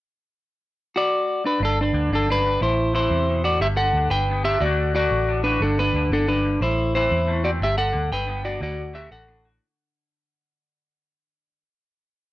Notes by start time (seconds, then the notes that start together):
0.96 F#4 D5
1.45 D4 B4
1.59 G1 G2 D4
1.65 A4
1.81 D4 B4
1.93 D2 D3 D4
2.09 G1 E2 D4
2.15 A4
2.26 F#2
2.30 D4 B4
2.45 G2
2.60 A1 A2 E4 C5
2.94 E3 C4 E4 C5
3.10 E2 C3
3.30 B2
3.44 A2 F#4 D5
3.60 G1 G2 G4 E5
3.77 A4 F#5
3.93 D2 D4, muted clean electric guitar stroke
4.09 G1 B4 G5
4.30 G2 B3
4.44 D4 G4 E5
4.60 D2 D3 A3 F#4 D5
4.65 D4 F#4
4.95 A3 F#4 D5
5.11 A1
5.27 A2 D4
5.44 D4 F#4 B4
5.60 G1 G2 D4 A4
5.79 D4 B4
5.93 D2 D3 D4
6.10 G1 E2 D4 A4
6.26 F#2 D4 B4
6.45 G2
6.61 A1 A2 E4 C5
6.95 E3 C4 E4 C5
7.11 E2
7.27 E2 A3
7.44 C4 F#4 D5
7.60 G1 G2 E5
7.64 G4
7.78 A4 F#5
7.93 D2 D3 D4
8.11 G1 B4 G5
8.27 G2 B3
8.45 D4 F#4 D5
8.61 D2 D3 F#4 D5
8.93 A3 F#4 G4 E5
9.11 A1 A4 F#5
9.27 A2 D4
9.45 F#4